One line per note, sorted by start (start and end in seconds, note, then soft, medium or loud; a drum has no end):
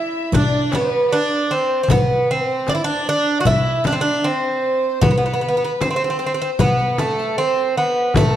0.00 0.31 E4 medium
0.00 0.31 E5 medium
0.32 0.75 D4 medium
0.32 riq medium
0.32 darbuka dum medium
0.32 frame drum medium
0.36 0.74 D5 medium
0.52 darbuka ka soft
0.72 1.14 B3 medium
0.72 1.13 B4 medium
0.72 riq soft
0.72 darbuka tek medium
0.72 frame drum medium
0.92 darbuka ka soft
1.12 1.53 D4 medium
1.12 1.51 D5 medium
1.49 1.82 C4 medium
1.49 1.91 C5 medium
1.49 darbuka ka soft
1.83 1.91 C4 medium
1.88 2.30 B3 medium
1.88 2.30 B4 medium
1.88 riq medium
1.88 darbuka dum medium
1.88 frame drum medium
2.31 2.70 C4 medium
2.31 2.43 B4 medium
2.43 2.70 C5 medium
2.67 2.74 D4 medium
2.67 2.81 D5 medium
2.67 riq soft
2.67 darbuka tek medium
2.67 frame drum medium
2.75 2.82 E4 medium
2.83 3.08 D4 medium
2.83 3.06 D5 medium
3.07 3.40 D4 medium
3.07 3.44 D5 medium
3.07 riq soft
3.41 3.46 F#4 medium
3.45 3.87 E4 medium
3.45 3.86 E5 medium
3.45 riq medium
3.45 darbuka dum medium
3.45 frame drum medium
3.65 darbuka ka soft
3.84 3.94 D4 medium
3.84 3.99 D5 medium
3.84 riq soft
3.84 darbuka tek medium
3.84 frame drum medium
3.92 4.00 C4 medium
4.01 4.26 D4 medium
4.01 4.17 D5 medium
4.01 darbuka ka soft
4.20 4.26 D5 medium
4.24 5.01 C4 medium
4.24 5.04 C5 medium
4.63 darbuka ka soft
5.01 5.09 B3 medium
5.01 5.81 B4 medium
5.01 riq medium
5.01 darbuka dum medium
5.01 frame drum loud
5.11 5.16 B3 medium
5.18 5.25 B3 medium
5.26 5.32 B3 soft
5.34 5.40 B3 medium
5.41 5.47 B3 medium
5.49 5.56 B3 medium
5.57 5.63 B3 soft
5.64 5.72 B3 medium
5.81 5.89 C4 medium
5.81 6.60 C5 medium
5.81 riq soft
5.81 darbuka tek medium
5.81 frame drum medium
5.90 5.95 C4 medium
5.96 6.03 C4 medium
6.04 6.09 C4 soft
6.10 6.18 C4 medium
6.19 6.25 C4 soft
6.19 riq soft
6.26 6.33 C4 medium
6.34 6.40 C4 medium
6.42 6.49 C4 medium
6.59 6.99 B3 medium
6.59 6.99 B4 medium
6.59 riq medium
6.59 frame drum medium
6.59 darbuka dum medium
6.79 riq soft
6.79 darbuka ka soft
6.98 7.38 A3 medium
6.98 7.37 A4 medium
6.98 riq soft
6.98 darbuka tek medium
6.98 frame drum medium
7.18 riq soft
7.18 darbuka ka soft
7.37 7.77 C4 medium
7.37 7.78 C5 medium
7.37 riq soft
7.37 darbuka ka soft
7.56 darbuka ka soft
7.75 8.17 B3 medium
7.75 8.16 B4 medium
7.75 darbuka ka soft
8.14 8.36 A3 medium
8.14 8.31 A#4 medium
8.14 riq medium
8.14 darbuka dum medium
8.14 frame drum medium
8.31 8.36 A4 medium